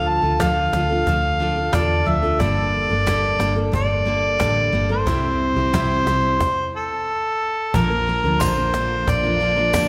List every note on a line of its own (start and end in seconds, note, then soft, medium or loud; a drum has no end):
0.00 0.19 D2 medium
0.00 0.22 D3 medium
0.00 0.23 F3 medium
0.00 0.23 D4 medium
0.00 0.23 F4 medium
0.00 0.21 A4 medium
0.00 0.10 F5 loud
0.09 0.44 A5 loud
0.22 0.69 D2 medium
0.22 0.39 D4 soft
0.22 0.40 F4 soft
0.22 0.39 A4 medium
0.39 0.73 D3 medium
0.39 0.71 F3 medium
0.39 0.72 D4 medium
0.39 0.73 F4 medium
0.39 0.74 A4 medium
0.39 1.77 F5 loud
0.39 cajon bass medium
0.39 cajon slap loud
0.72 1.04 D2 loud
0.72 0.90 F3 medium
0.72 0.90 D4 medium
0.72 0.90 F4 medium
0.72 0.88 A4 medium
0.72 cajon slap medium
0.89 1.06 D4 soft
0.89 1.07 F4 soft
0.89 1.06 A4 soft
1.06 1.69 D2 loud
1.06 1.38 F3 medium
1.06 1.39 D4 medium
1.06 1.40 F4 medium
1.06 1.41 A4 medium
1.06 cajon bass loud
1.39 1.56 F3 medium
1.39 1.57 D4 medium
1.39 1.56 F4 medium
1.39 1.54 A4 medium
1.56 1.72 D4 soft
1.56 1.73 F4 soft
1.56 1.73 A4 medium
1.72 2.04 E2 medium
1.72 2.06 D3 medium
1.72 2.05 D4 medium
1.72 2.06 F4 medium
1.72 2.07 A4 medium
1.72 2.10 D5 medium
1.72 cajon bass loud
1.72 cajon slap loud
2.06 2.38 D2 medium
2.06 2.23 F3 medium
2.06 2.23 D4 medium
2.06 2.23 F4 medium
2.06 2.21 A4 medium
2.06 2.42 E5 medium
2.22 2.40 D4 soft
2.22 2.40 F4 soft
2.22 2.40 A4 medium
2.39 2.86 G1 medium
2.39 2.90 G2 medium
2.39 2.90 D3 medium
2.39 2.90 G3 medium
2.39 2.90 A#3 medium
2.39 2.89 D4 medium
2.39 2.88 A4 medium
2.39 3.59 D5 loud
2.39 cajon bass loud
2.89 3.36 G1 medium
2.89 3.05 G3 soft
2.89 3.06 A#3 soft
2.89 3.06 D4 medium
2.89 3.06 A4 medium
3.06 3.40 G2 medium
3.06 3.40 D3 medium
3.06 3.38 G3 medium
3.06 3.39 A#3 medium
3.06 3.40 D4 medium
3.06 3.40 A4 medium
3.06 cajon bass loud
3.06 cajon slap loud
3.39 3.71 G1 medium
3.39 3.56 G3 medium
3.39 3.56 A#3 medium
3.39 3.55 D4 medium
3.39 3.54 A4 medium
3.39 cajon slap medium
3.55 3.71 G3 soft
3.55 3.72 A#3 soft
3.55 3.72 D4 soft
3.55 3.73 A4 soft
3.72 4.36 G1 medium
3.72 4.04 G3 medium
3.72 4.05 A#3 medium
3.72 4.06 D4 medium
3.72 4.07 A4 medium
3.72 4.87 D5 loud
3.72 cajon bass loud
4.05 4.39 G3 medium
4.05 4.39 A#3 medium
4.05 4.39 D4 medium
4.05 4.40 A4 medium
4.39 4.71 A1 medium
4.39 4.73 G2 medium
4.39 4.73 D3 medium
4.39 4.71 G3 medium
4.39 4.72 A#3 medium
4.39 4.73 D4 medium
4.39 4.74 A4 medium
4.39 cajon bass loud
4.39 cajon slap loud
4.72 5.04 G1 medium
4.72 4.90 G3 medium
4.72 4.90 A#3 medium
4.72 4.89 D4 medium
4.72 4.88 A4 medium
4.89 5.05 G3 soft
4.89 5.06 A#3 medium
4.89 5.07 D4 medium
4.89 5.06 A4 medium
4.89 6.70 C5 loud
5.06 5.53 C2 medium
5.06 5.56 C3 medium
5.06 5.57 G3 medium
5.06 5.57 C4 medium
5.06 5.57 E4 medium
5.06 5.55 G4 medium
5.06 cajon bass loud
5.56 6.03 C2 medium
5.56 5.73 C4 soft
5.56 5.74 E4 soft
5.56 5.73 G4 medium
5.73 6.07 C3 medium
5.73 6.05 G3 medium
5.73 6.06 C4 medium
5.73 6.07 E4 loud
5.73 6.08 G4 loud
5.73 cajon bass medium
5.73 cajon slap loud
6.06 6.38 C2 loud
6.06 6.40 G3 medium
6.06 6.41 C4 medium
6.06 6.41 E4 medium
6.06 6.41 G4 medium
6.06 cajon slap medium
6.40 cajon bass loud
6.40 cajon slap medium
6.76 7.77 A4 loud
7.73 8.20 A#1 loud
7.73 7.91 A#2 medium
7.73 9.88 D3 medium
7.73 7.91 D3 medium
7.73 7.91 F3 medium
7.73 9.88 A#3 medium
7.73 7.91 A#3 medium
7.73 7.90 D4 medium
7.73 9.88 F4 medium
7.73 7.89 A#4 medium
7.73 8.43 A#4 loud
7.73 cajon bass loud
7.90 8.06 F3 soft
7.90 8.07 A#3 soft
7.90 8.08 D4 soft
7.90 8.07 A#4 medium
8.07 8.24 F3 medium
8.07 8.24 A#3 medium
8.07 8.24 D4 medium
8.07 8.23 A#4 medium
8.24 8.39 D2 medium
8.24 8.40 F3 soft
8.24 8.40 A#3 soft
8.24 8.41 D4 medium
8.24 8.41 A#4 medium
8.40 9.03 A#1 loud
8.40 8.57 A#2 medium
8.40 8.57 D3 medium
8.40 8.58 F3 medium
8.40 8.57 A#3 medium
8.40 8.57 D4 medium
8.40 8.56 A#4 medium
8.40 9.11 C5 loud
8.40 cajon bass loud
8.40 cajon slap loud
8.40 tambourine medium
8.57 8.72 F3 soft
8.57 8.73 A#3 soft
8.57 8.74 D4 medium
8.57 8.74 A#4 soft
8.73 9.24 F3 medium
8.73 9.24 A#3 medium
8.73 9.23 D4 medium
8.73 9.22 A#4 medium
8.73 cajon slap medium
9.07 9.88 A#1 loud
9.07 9.88 D5 loud
9.07 cajon bass loud
9.23 9.39 F3 soft
9.23 9.40 A#3 soft
9.23 9.41 D4 medium
9.23 9.40 A#4 medium
9.40 9.57 F3 medium
9.40 9.57 A#3 medium
9.40 9.56 D4 medium
9.40 9.55 A#4 medium
9.56 9.73 F3 soft
9.56 9.73 A#3 soft
9.56 9.74 D4 soft
9.56 9.74 A#4 medium
9.73 9.88 A#2 medium
9.73 9.88 D3 medium
9.73 9.88 F3 medium
9.73 9.88 A#3 medium
9.73 9.88 D4 medium
9.73 9.88 A#4 medium
9.73 cajon bass loud
9.73 cajon slap loud
9.73 tambourine medium